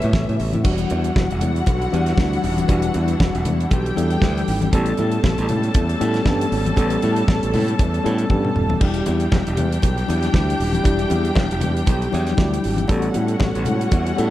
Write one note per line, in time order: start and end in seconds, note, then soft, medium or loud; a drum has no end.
0.00 0.12 A2 loud
0.00 0.67 C#3 medium
0.00 0.62 G3 medium
0.00 0.64 G3 medium
0.00 0.62 A3 medium
0.00 0.67 A3 medium
0.00 0.67 B3 medium
0.00 0.61 C#4 medium
0.00 0.62 C#4 medium
0.00 0.65 F#4 medium
0.00 0.61 B4 loud
0.00 0.35 E5 medium
0.00 0.61 E5 loud
0.00 closed hi-hat soft
0.13 0.24 A1 loud
0.13 kick loud
0.13 snare loud
0.13 high conga medium
0.29 0.37 A2 medium
0.29 closed hi-hat soft
0.40 0.50 A1 loud
0.40 open hi-hat medium
0.53 0.62 A2 loud
0.53 closed hi-hat soft
0.53 high conga medium
0.64 0.84 E1 loud
0.64 1.35 E3 medium
0.64 4.69 E3 medium
0.64 1.35 G3 medium
0.64 12.86 G3 medium
0.64 1.35 D4 medium
0.64 4.69 D4 medium
0.64 4.69 E4 medium
0.64 3.67 F#4 medium
0.64 1.35 F#4 loud
0.64 3.67 F#5 loud
0.64 kick loud
0.64 crash medium
0.64 muted conga medium
0.78 closed hi-hat soft
0.90 1.10 E2 medium
0.90 closed hi-hat medium
0.90 muted conga medium
1.04 closed hi-hat soft
1.16 1.27 E1 loud
1.16 kick loud
1.16 snare loud
1.16 high conga medium
1.31 1.39 E1 loud
1.31 closed hi-hat medium
1.40 1.61 E2 loud
1.40 closed hi-hat medium
1.40 low conga medium
1.56 closed hi-hat soft
1.66 1.86 B1 medium
1.66 kick loud
1.66 closed hi-hat medium
1.66 muted conga medium
1.82 closed hi-hat soft
1.92 2.12 E2 loud
1.92 2.10 E3 medium
1.92 2.11 G3 medium
1.92 2.11 D4 medium
1.92 2.11 G4 loud
1.92 closed hi-hat medium
2.06 snare soft
2.06 closed hi-hat soft
2.17 2.37 D2 medium
2.17 2.53 E3 medium
2.17 2.54 G3 medium
2.17 2.54 D4 medium
2.17 2.54 F#4 medium
2.17 kick loud
2.17 snare loud
2.17 high conga medium
2.33 closed hi-hat soft
2.44 2.62 D#1 medium
2.44 open hi-hat medium
2.57 closed hi-hat soft
2.57 high conga medium
2.68 2.88 E1 loud
2.68 3.39 E3 medium
2.68 3.39 G3 medium
2.68 3.40 D4 medium
2.68 3.40 F#4 loud
2.68 kick loud
2.68 closed hi-hat medium
2.68 muted conga medium
2.82 closed hi-hat medium
2.94 3.14 E2 loud
2.94 closed hi-hat soft
2.94 muted conga medium
3.08 closed hi-hat soft
3.20 3.31 E1 loud
3.20 kick loud
3.20 snare loud
3.20 high conga medium
3.35 3.43 E1 loud
3.35 closed hi-hat soft
3.45 3.65 E2 medium
3.45 closed hi-hat medium
3.45 low conga medium
3.60 closed hi-hat soft
3.71 3.90 B1 medium
3.71 4.72 G4 medium
3.71 4.72 G5 loud
3.71 kick loud
3.71 closed hi-hat medium
3.71 muted conga medium
3.86 closed hi-hat soft
3.95 4.16 E2 loud
3.95 4.14 E3 medium
3.95 4.15 G3 medium
3.95 4.15 D4 medium
3.95 4.15 A4 loud
3.95 closed hi-hat medium
3.95 muted conga soft
4.10 closed hi-hat soft
4.21 4.41 D2 loud
4.21 4.58 E3 medium
4.21 4.58 G3 medium
4.21 4.58 D4 medium
4.21 4.58 G4 medium
4.21 kick loud
4.21 snare loud
4.21 high conga medium
4.38 closed hi-hat soft
4.48 4.67 G#1 medium
4.48 open hi-hat medium
4.61 closed hi-hat soft
4.61 high conga medium
4.72 4.92 A1 loud
4.72 5.43 G3 loud
4.72 8.77 A3 medium
4.72 5.44 B3 medium
4.72 8.77 C#4 medium
4.72 5.44 C#4 loud
4.72 8.77 A4 medium
4.72 5.44 A4 loud
4.72 8.77 A5 medium
4.72 kick loud
4.72 closed hi-hat medium
4.72 muted conga medium
4.86 closed hi-hat medium
4.97 5.18 A2 medium
4.97 closed hi-hat soft
4.97 muted conga medium
5.12 closed hi-hat soft
5.24 5.35 A1 loud
5.24 kick loud
5.24 snare loud
5.24 high conga medium
5.38 5.47 A1 loud
5.38 closed hi-hat soft
5.49 5.68 A2 loud
5.49 closed hi-hat medium
5.49 low conga medium
5.63 closed hi-hat soft
5.74 5.94 E2 medium
5.74 kick loud
5.74 closed hi-hat medium
5.74 muted conga medium
5.89 closed hi-hat soft
5.99 6.20 A2 loud
5.99 6.18 G3 medium
5.99 6.19 B3 medium
5.99 6.19 C#4 medium
5.99 6.19 A4 loud
5.99 closed hi-hat medium
5.99 muted conga soft
6.14 snare soft
6.14 closed hi-hat soft
6.25 6.45 G2 medium
6.25 6.62 G3 medium
6.25 6.62 B3 medium
6.25 6.62 C#4 medium
6.25 6.62 A4 medium
6.25 kick loud
6.25 snare loud
6.25 high conga medium
6.41 closed hi-hat medium
6.52 6.71 G#1 medium
6.52 open hi-hat medium
6.65 closed hi-hat soft
6.65 high conga medium
6.76 6.96 A1 loud
6.76 7.47 G3 medium
6.76 7.47 B3 medium
6.76 7.47 C#4 medium
6.76 7.48 A4 loud
6.76 kick loud
6.76 closed hi-hat medium
6.76 muted conga medium
6.90 closed hi-hat medium
7.02 7.22 A2 medium
7.02 closed hi-hat medium
7.02 muted conga medium
7.16 closed hi-hat soft
7.28 7.39 A1 loud
7.28 kick loud
7.28 snare loud
7.28 high conga medium
7.43 7.51 A1 medium
7.43 closed hi-hat soft
7.53 7.73 A2 loud
7.53 open hi-hat medium
7.53 low conga medium
7.68 closed hi-hat soft
7.79 7.98 E2 medium
7.79 kick loud
7.79 closed hi-hat medium
7.79 muted conga medium
7.94 closed hi-hat soft
8.04 8.24 A2 loud
8.04 8.23 G3 medium
8.04 8.23 B3 medium
8.04 8.23 C#4 medium
8.04 8.23 A4 medium
8.04 closed hi-hat medium
8.04 muted conga soft
8.18 closed hi-hat soft
8.30 8.49 G2 medium
8.30 8.66 G3 medium
8.30 8.66 B3 medium
8.30 8.66 C#4 medium
8.30 8.67 A4 medium
8.30 kick loud
8.30 high tom medium
8.30 high conga medium
8.45 mid tom medium
8.56 8.75 D#1 medium
8.56 mid tom medium
8.69 floor tom medium
8.69 high conga medium
8.81 9.00 E1 medium
8.81 12.86 E3 medium
8.81 9.51 G3 loud
8.81 9.52 D4 medium
8.81 12.86 D4 medium
8.81 9.52 E4 medium
8.81 12.86 G4 medium
8.81 9.52 G4 loud
8.81 12.86 G4 loud
8.81 12.86 G5 loud
8.81 kick loud
8.81 crash medium
8.81 muted conga medium
8.94 closed hi-hat medium
9.06 9.26 E2 loud
9.06 closed hi-hat medium
9.06 muted conga medium
9.20 closed hi-hat soft
9.32 9.43 E1 loud
9.32 kick loud
9.32 snare loud
9.32 high conga medium
9.47 9.55 E1 loud
9.47 closed hi-hat soft
9.57 9.77 E2 loud
9.57 closed hi-hat medium
9.57 low conga medium
9.72 closed hi-hat medium
9.82 10.02 B1 loud
9.82 kick loud
9.82 closed hi-hat loud
9.82 muted conga medium
9.98 closed hi-hat soft
10.07 10.28 E2 loud
10.07 10.27 F#3 medium
10.07 10.27 D4 medium
10.07 10.27 E4 medium
10.07 10.27 G4 loud
10.07 closed hi-hat medium
10.07 muted conga soft
10.23 snare soft
10.23 closed hi-hat soft
10.32 10.53 D2 medium
10.32 10.69 G3 medium
10.32 10.69 D4 medium
10.32 10.70 E4 medium
10.32 10.70 G4 medium
10.32 kick loud
10.32 snare loud
10.32 high conga medium
10.50 closed hi-hat soft
10.60 10.79 D#1 medium
10.60 open hi-hat medium
10.73 closed hi-hat medium
10.73 high conga medium
10.84 11.04 E1 loud
10.84 11.55 G3 loud
10.84 11.55 D4 medium
10.84 11.56 E4 medium
10.84 11.56 G4 loud
10.84 kick loud
10.84 closed hi-hat medium
10.84 muted conga soft
10.99 closed hi-hat medium
11.10 11.30 E2 medium
11.10 closed hi-hat medium
11.10 muted conga medium
11.25 closed hi-hat soft
11.35 11.47 E1 loud
11.35 kick loud
11.35 snare loud
11.35 high conga loud
11.51 11.60 E1 loud
11.51 closed hi-hat medium
11.61 11.81 E2 medium
11.61 closed hi-hat medium
11.61 low conga medium
11.77 closed hi-hat soft
11.86 12.06 B1 loud
11.86 kick loud
11.86 closed hi-hat medium
11.86 muted conga medium
12.02 closed hi-hat soft
12.11 12.32 E2 loud
12.11 12.31 F#3 medium
12.11 12.31 D4 medium
12.11 12.31 E4 medium
12.11 12.31 G4 loud
12.11 closed hi-hat medium
12.11 muted conga soft
12.27 snare soft
12.27 closed hi-hat soft
12.37 12.57 D2 loud
12.37 12.74 G3 medium
12.37 12.74 D4 medium
12.37 12.75 E4 medium
12.37 12.75 G4 medium
12.37 kick loud
12.37 snare loud
12.37 high conga medium
12.54 closed hi-hat medium
12.64 12.84 G#1 medium
12.64 open hi-hat medium
12.76 closed hi-hat medium
12.76 high conga medium
12.88 13.08 A1 loud
12.88 14.30 G3 medium
12.88 13.59 G3 loud
12.88 14.30 A3 medium
12.88 13.60 B3 medium
12.88 14.30 C#4 medium
12.88 13.60 C#4 loud
12.88 14.30 F#4 medium
12.88 13.60 A4 loud
12.88 14.30 F#5 loud
12.88 kick loud
12.88 closed hi-hat medium
12.88 muted conga medium
13.02 closed hi-hat soft
13.14 13.34 A2 medium
13.14 closed hi-hat medium
13.14 muted conga medium
13.28 closed hi-hat soft
13.40 13.52 A1 loud
13.40 kick loud
13.40 snare loud
13.40 high conga loud
13.55 13.64 A1 medium
13.55 closed hi-hat medium
13.65 13.86 A2 medium
13.65 closed hi-hat medium
13.65 low conga medium
13.81 closed hi-hat medium
13.91 14.11 E2 loud
13.91 kick loud
13.91 closed hi-hat medium
13.91 muted conga medium
14.06 closed hi-hat soft
14.17 14.30 A2 loud
14.17 14.30 G3 loud
14.17 14.30 B3 medium
14.17 14.30 C#4 medium
14.17 14.30 A4 medium
14.17 closed hi-hat medium